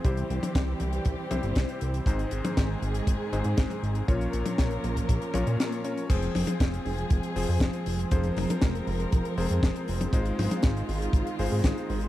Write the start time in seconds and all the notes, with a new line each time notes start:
Already playing: C4
0.05 C2 C3 E3 G3 C4 E4 G4 C5, kick, closed hi-hat
0.17 closed hi-hat
0.30 C2, closed hi-hat
0.43 closed hi-hat, high tom
0.55 C2, kick, snare, closed hi-hat
0.80 C2, closed hi-hat, high tom
0.93 closed hi-hat
1.05 C2, kick, closed hi-hat
1.31 C2 C3 C4 E4 G4 C5, closed hi-hat, high tom
1.43 G1, closed hi-hat
1.55 C2, kick, snare, closed hi-hat
1.69 closed hi-hat
1.81 C2, closed hi-hat
1.94 closed hi-hat
2.06 G#1 G#2 D#3 G#3 C4 D#4 G#4 C5, kick, closed hi-hat
2.19 closed hi-hat
2.31 G#1, closed hi-hat
2.45 closed hi-hat, high tom
2.57 G#1, kick, snare, closed hi-hat
2.82 G#1, closed hi-hat
2.94 closed hi-hat
3.07 G#1, kick, closed hi-hat
3.33 G#1 G#2 C4 D#4 G#4 C5, closed hi-hat
3.44 G#2, closed hi-hat
3.57 G#1, kick, snare, closed hi-hat
3.70 closed hi-hat, high tom
3.83 G#1, closed hi-hat
3.95 closed hi-hat
4.08 A#1 A#2 F3 A#3 C#4 F4 A#4 C#5, kick, closed hi-hat
4.21 closed hi-hat
4.33 A#1, closed hi-hat
4.46 closed hi-hat, high tom
4.58 A#1, kick, snare, closed hi-hat
4.71 closed hi-hat
4.84 A#1, closed hi-hat, high tom
4.97 kick, closed hi-hat
5.09 A#1, kick, closed hi-hat
5.22 closed hi-hat
5.34 A#1 A#2 C#4 F4 A#4 C#5, closed hi-hat, high tom
5.47 A#2, closed hi-hat
5.60 snare, closed hi-hat
5.72 closed hi-hat
5.84 C#4 F4 A#4 C#5, closed hi-hat
5.98 closed hi-hat
6.10 F1 F3 G#3 C4 F4 G#4 C5, kick, closed hi-hat, crash
6.22 closed hi-hat
6.35 F1, open hi-hat, high tom
6.47 closed hi-hat, high tom
6.60 F1, kick, snare, closed hi-hat
6.74 closed hi-hat
6.86 F1, open hi-hat
6.98 closed hi-hat
7.10 F1, kick, closed hi-hat
7.23 closed hi-hat
7.36 F1 F3 C4 F4 G#4 C5, open hi-hat
7.48 F2, open hi-hat
7.60 F1, kick, snare, closed hi-hat
7.73 closed hi-hat
7.86 F1, open hi-hat
7.99 closed hi-hat
8.11 F1 F3 C4 F4 G#4 A#4 C5, kick, closed hi-hat
8.24 closed hi-hat
8.37 F1, open hi-hat, high tom
8.50 closed hi-hat, high tom
8.62 F1, kick, snare, closed hi-hat
8.75 closed hi-hat
8.87 F1, open hi-hat
9.00 closed hi-hat
9.12 F1, kick, closed hi-hat
9.25 closed hi-hat
9.38 F1 F3 C4 F4 G#4 C5, open hi-hat
9.51 F2, closed hi-hat
9.63 F1, kick, snare, closed hi-hat
9.76 closed hi-hat
9.88 F1, open hi-hat
10.01 closed hi-hat, high tom
10.13 G#1 D#3 G#3 D#4 F4 G#4 C5, kick, closed hi-hat
10.25 closed hi-hat
10.39 G#1, open hi-hat, high tom
10.51 closed hi-hat, high tom
10.62 G#1, kick, snare, closed hi-hat
10.77 closed hi-hat
10.89 G#1, open hi-hat
11.02 closed hi-hat
11.13 G#1, kick, closed hi-hat
11.27 closed hi-hat
11.39 G#1 G#3 D#4 F4 G#4 C5, open hi-hat
11.51 G#2, open hi-hat
11.64 G#1, kick, snare, closed hi-hat
11.78 closed hi-hat
11.90 G#1, open hi-hat
12.01 closed hi-hat